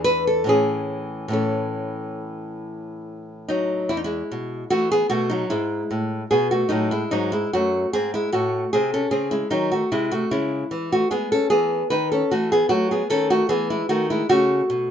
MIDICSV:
0, 0, Header, 1, 2, 480
1, 0, Start_track
1, 0, Key_signature, 3, "major"
1, 0, Tempo, 854701
1, 267, Time_signature, 4, 2, 24, 8
1, 2185, Key_signature, 4, "major"
1, 2186, Tempo, 804290
1, 4586, Tempo, 796813
1, 8799, End_track
2, 0, Start_track
2, 0, Title_t, "Nylon-string guitar"
2, 0, Program_c, 0, 24
2, 0, Note_on_c, 0, 40, 74
2, 0, Note_on_c, 0, 52, 63
2, 0, Note_on_c, 0, 62, 59
2, 25, Note_on_c, 0, 71, 113
2, 145, Note_off_c, 0, 71, 0
2, 153, Note_on_c, 0, 69, 88
2, 243, Note_off_c, 0, 40, 0
2, 248, Note_off_c, 0, 52, 0
2, 248, Note_on_c, 0, 45, 68
2, 253, Note_off_c, 0, 62, 0
2, 260, Note_on_c, 0, 52, 61
2, 265, Note_on_c, 0, 61, 65
2, 271, Note_off_c, 0, 69, 0
2, 275, Note_on_c, 0, 68, 106
2, 714, Note_off_c, 0, 45, 0
2, 721, Note_on_c, 0, 45, 75
2, 726, Note_off_c, 0, 52, 0
2, 732, Note_on_c, 0, 52, 66
2, 733, Note_off_c, 0, 61, 0
2, 733, Note_off_c, 0, 68, 0
2, 739, Note_on_c, 0, 61, 56
2, 748, Note_on_c, 0, 69, 73
2, 1689, Note_off_c, 0, 69, 0
2, 1957, Note_on_c, 0, 63, 89
2, 1962, Note_off_c, 0, 52, 0
2, 1964, Note_on_c, 0, 54, 70
2, 2149, Note_off_c, 0, 45, 0
2, 2158, Note_off_c, 0, 61, 0
2, 2175, Note_off_c, 0, 54, 0
2, 2178, Note_off_c, 0, 63, 0
2, 2186, Note_on_c, 0, 40, 72
2, 2186, Note_on_c, 0, 64, 86
2, 2227, Note_off_c, 0, 64, 0
2, 2232, Note_on_c, 0, 63, 72
2, 2271, Note_off_c, 0, 63, 0
2, 2276, Note_on_c, 0, 64, 88
2, 2284, Note_on_c, 0, 56, 63
2, 2378, Note_off_c, 0, 40, 0
2, 2438, Note_on_c, 0, 47, 75
2, 2626, Note_off_c, 0, 47, 0
2, 2651, Note_off_c, 0, 56, 0
2, 2655, Note_off_c, 0, 64, 0
2, 2670, Note_on_c, 0, 66, 101
2, 2671, Note_on_c, 0, 52, 79
2, 2674, Note_on_c, 0, 57, 85
2, 2782, Note_off_c, 0, 57, 0
2, 2789, Note_off_c, 0, 66, 0
2, 2796, Note_on_c, 0, 68, 100
2, 2806, Note_on_c, 0, 59, 77
2, 2862, Note_off_c, 0, 52, 0
2, 2901, Note_off_c, 0, 68, 0
2, 2904, Note_on_c, 0, 66, 105
2, 2906, Note_on_c, 0, 47, 86
2, 2909, Note_off_c, 0, 59, 0
2, 2912, Note_on_c, 0, 57, 77
2, 3021, Note_off_c, 0, 57, 0
2, 3023, Note_on_c, 0, 63, 84
2, 3025, Note_off_c, 0, 66, 0
2, 3033, Note_on_c, 0, 54, 70
2, 3098, Note_off_c, 0, 47, 0
2, 3141, Note_off_c, 0, 54, 0
2, 3143, Note_off_c, 0, 63, 0
2, 3145, Note_on_c, 0, 64, 86
2, 3147, Note_on_c, 0, 44, 78
2, 3151, Note_on_c, 0, 56, 66
2, 3337, Note_off_c, 0, 44, 0
2, 3388, Note_on_c, 0, 45, 74
2, 3577, Note_off_c, 0, 45, 0
2, 3601, Note_off_c, 0, 56, 0
2, 3603, Note_off_c, 0, 64, 0
2, 3627, Note_on_c, 0, 68, 102
2, 3628, Note_on_c, 0, 47, 80
2, 3633, Note_on_c, 0, 59, 69
2, 3739, Note_off_c, 0, 59, 0
2, 3744, Note_off_c, 0, 68, 0
2, 3748, Note_on_c, 0, 66, 81
2, 3755, Note_on_c, 0, 57, 58
2, 3818, Note_off_c, 0, 47, 0
2, 3854, Note_on_c, 0, 63, 91
2, 3860, Note_on_c, 0, 45, 77
2, 3861, Note_off_c, 0, 57, 0
2, 3864, Note_on_c, 0, 54, 73
2, 3865, Note_off_c, 0, 66, 0
2, 3975, Note_off_c, 0, 54, 0
2, 3978, Note_off_c, 0, 63, 0
2, 3988, Note_on_c, 0, 64, 79
2, 3993, Note_on_c, 0, 56, 71
2, 4054, Note_off_c, 0, 45, 0
2, 4101, Note_off_c, 0, 56, 0
2, 4106, Note_off_c, 0, 64, 0
2, 4107, Note_on_c, 0, 63, 93
2, 4111, Note_on_c, 0, 44, 78
2, 4117, Note_on_c, 0, 54, 74
2, 4223, Note_off_c, 0, 54, 0
2, 4227, Note_off_c, 0, 63, 0
2, 4231, Note_on_c, 0, 64, 88
2, 4238, Note_on_c, 0, 56, 64
2, 4302, Note_off_c, 0, 44, 0
2, 4344, Note_off_c, 0, 56, 0
2, 4349, Note_off_c, 0, 64, 0
2, 4359, Note_on_c, 0, 66, 96
2, 4360, Note_on_c, 0, 42, 70
2, 4368, Note_on_c, 0, 57, 70
2, 4547, Note_off_c, 0, 42, 0
2, 4581, Note_off_c, 0, 57, 0
2, 4583, Note_off_c, 0, 66, 0
2, 4598, Note_on_c, 0, 44, 69
2, 4598, Note_on_c, 0, 68, 110
2, 4605, Note_on_c, 0, 60, 76
2, 4708, Note_off_c, 0, 60, 0
2, 4712, Note_off_c, 0, 68, 0
2, 4721, Note_on_c, 0, 64, 95
2, 4728, Note_on_c, 0, 56, 66
2, 4786, Note_off_c, 0, 44, 0
2, 4830, Note_off_c, 0, 56, 0
2, 4834, Note_off_c, 0, 64, 0
2, 4834, Note_on_c, 0, 45, 86
2, 4836, Note_on_c, 0, 66, 80
2, 4843, Note_on_c, 0, 57, 66
2, 5022, Note_off_c, 0, 45, 0
2, 5058, Note_off_c, 0, 57, 0
2, 5061, Note_off_c, 0, 66, 0
2, 5077, Note_on_c, 0, 68, 98
2, 5083, Note_on_c, 0, 48, 75
2, 5088, Note_on_c, 0, 60, 86
2, 5187, Note_off_c, 0, 60, 0
2, 5191, Note_off_c, 0, 68, 0
2, 5202, Note_on_c, 0, 69, 87
2, 5206, Note_on_c, 0, 61, 65
2, 5267, Note_off_c, 0, 48, 0
2, 5305, Note_off_c, 0, 69, 0
2, 5306, Note_on_c, 0, 49, 66
2, 5307, Note_off_c, 0, 61, 0
2, 5307, Note_on_c, 0, 68, 94
2, 5312, Note_on_c, 0, 60, 62
2, 5420, Note_off_c, 0, 60, 0
2, 5425, Note_off_c, 0, 68, 0
2, 5427, Note_on_c, 0, 64, 96
2, 5434, Note_on_c, 0, 56, 66
2, 5497, Note_off_c, 0, 49, 0
2, 5541, Note_off_c, 0, 56, 0
2, 5543, Note_off_c, 0, 64, 0
2, 5544, Note_on_c, 0, 51, 70
2, 5546, Note_on_c, 0, 63, 91
2, 5551, Note_on_c, 0, 54, 75
2, 5660, Note_off_c, 0, 54, 0
2, 5665, Note_off_c, 0, 63, 0
2, 5671, Note_on_c, 0, 66, 81
2, 5682, Note_on_c, 0, 57, 61
2, 5737, Note_off_c, 0, 51, 0
2, 5786, Note_off_c, 0, 57, 0
2, 5788, Note_off_c, 0, 66, 0
2, 5793, Note_on_c, 0, 48, 82
2, 5794, Note_on_c, 0, 64, 94
2, 5798, Note_on_c, 0, 56, 67
2, 5904, Note_off_c, 0, 56, 0
2, 5909, Note_off_c, 0, 64, 0
2, 5912, Note_on_c, 0, 66, 87
2, 5917, Note_on_c, 0, 57, 65
2, 5982, Note_off_c, 0, 48, 0
2, 6024, Note_off_c, 0, 57, 0
2, 6029, Note_off_c, 0, 66, 0
2, 6031, Note_on_c, 0, 49, 80
2, 6031, Note_on_c, 0, 64, 84
2, 6039, Note_on_c, 0, 56, 68
2, 6222, Note_off_c, 0, 49, 0
2, 6271, Note_on_c, 0, 52, 73
2, 6370, Note_off_c, 0, 56, 0
2, 6375, Note_off_c, 0, 64, 0
2, 6399, Note_on_c, 0, 66, 92
2, 6405, Note_on_c, 0, 57, 67
2, 6462, Note_off_c, 0, 52, 0
2, 6507, Note_off_c, 0, 57, 0
2, 6509, Note_off_c, 0, 66, 0
2, 6509, Note_on_c, 0, 56, 68
2, 6511, Note_on_c, 0, 68, 96
2, 6518, Note_on_c, 0, 59, 78
2, 6626, Note_off_c, 0, 59, 0
2, 6630, Note_off_c, 0, 68, 0
2, 6637, Note_on_c, 0, 69, 103
2, 6643, Note_on_c, 0, 61, 65
2, 6703, Note_off_c, 0, 56, 0
2, 6744, Note_off_c, 0, 69, 0
2, 6746, Note_on_c, 0, 68, 100
2, 6749, Note_off_c, 0, 61, 0
2, 6749, Note_on_c, 0, 52, 73
2, 6754, Note_on_c, 0, 59, 71
2, 6942, Note_off_c, 0, 52, 0
2, 6975, Note_off_c, 0, 59, 0
2, 6978, Note_off_c, 0, 68, 0
2, 6989, Note_on_c, 0, 71, 103
2, 6993, Note_on_c, 0, 51, 66
2, 6997, Note_on_c, 0, 63, 81
2, 7105, Note_off_c, 0, 63, 0
2, 7109, Note_off_c, 0, 71, 0
2, 7117, Note_on_c, 0, 69, 81
2, 7125, Note_on_c, 0, 61, 61
2, 7183, Note_off_c, 0, 51, 0
2, 7229, Note_off_c, 0, 61, 0
2, 7233, Note_off_c, 0, 69, 0
2, 7236, Note_on_c, 0, 66, 81
2, 7237, Note_on_c, 0, 52, 75
2, 7241, Note_on_c, 0, 57, 69
2, 7347, Note_off_c, 0, 57, 0
2, 7353, Note_off_c, 0, 66, 0
2, 7360, Note_on_c, 0, 68, 98
2, 7366, Note_on_c, 0, 59, 75
2, 7426, Note_off_c, 0, 52, 0
2, 7461, Note_off_c, 0, 68, 0
2, 7464, Note_on_c, 0, 66, 94
2, 7465, Note_on_c, 0, 54, 67
2, 7470, Note_off_c, 0, 59, 0
2, 7470, Note_on_c, 0, 57, 75
2, 7581, Note_off_c, 0, 57, 0
2, 7586, Note_off_c, 0, 66, 0
2, 7597, Note_on_c, 0, 68, 76
2, 7602, Note_on_c, 0, 59, 62
2, 7658, Note_off_c, 0, 54, 0
2, 7707, Note_off_c, 0, 59, 0
2, 7709, Note_off_c, 0, 68, 0
2, 7709, Note_on_c, 0, 51, 78
2, 7712, Note_on_c, 0, 69, 112
2, 7717, Note_on_c, 0, 61, 73
2, 7824, Note_off_c, 0, 61, 0
2, 7829, Note_off_c, 0, 69, 0
2, 7833, Note_on_c, 0, 66, 92
2, 7836, Note_on_c, 0, 57, 66
2, 7900, Note_off_c, 0, 51, 0
2, 7943, Note_off_c, 0, 57, 0
2, 7943, Note_off_c, 0, 66, 0
2, 7944, Note_on_c, 0, 52, 82
2, 7946, Note_on_c, 0, 68, 100
2, 7953, Note_on_c, 0, 59, 77
2, 8062, Note_off_c, 0, 59, 0
2, 8066, Note_off_c, 0, 68, 0
2, 8073, Note_on_c, 0, 64, 76
2, 8082, Note_on_c, 0, 56, 61
2, 8139, Note_off_c, 0, 52, 0
2, 8184, Note_off_c, 0, 64, 0
2, 8187, Note_on_c, 0, 66, 94
2, 8188, Note_off_c, 0, 56, 0
2, 8190, Note_on_c, 0, 51, 78
2, 8194, Note_on_c, 0, 57, 66
2, 8303, Note_off_c, 0, 57, 0
2, 8308, Note_off_c, 0, 66, 0
2, 8314, Note_on_c, 0, 64, 82
2, 8320, Note_on_c, 0, 56, 65
2, 8381, Note_off_c, 0, 51, 0
2, 8426, Note_off_c, 0, 56, 0
2, 8428, Note_off_c, 0, 64, 0
2, 8428, Note_on_c, 0, 49, 82
2, 8430, Note_on_c, 0, 66, 105
2, 8435, Note_on_c, 0, 57, 77
2, 8619, Note_off_c, 0, 49, 0
2, 8672, Note_on_c, 0, 47, 74
2, 8799, Note_off_c, 0, 47, 0
2, 8799, Note_off_c, 0, 57, 0
2, 8799, Note_off_c, 0, 66, 0
2, 8799, End_track
0, 0, End_of_file